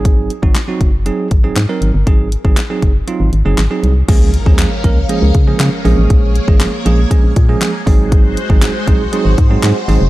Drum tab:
CC |----------------|----------------|x---------------|----------------|
HH |x-x-x-x-x-x-x-x-|x-x-x-x-x-x-x-x-|x-x-x-x-x-x-x-o-|x-x-x-x-x-x-x-o-|
CP |----x-------x---|----x-------x---|----x-------x---|----x-------x---|
SD |----o-------o---|----o-------o---|----o-------o---|----o-------o---|
BD |o--o--o---o-----|o--o--o---------|o--o--o---o-----|o--o----o-o---o-|

CC |----------------|
HH |x-x-x-x-x-x-x-o-|
CP |----x-------x---|
SD |----o-------o---|
BD |o--o--o---o-----|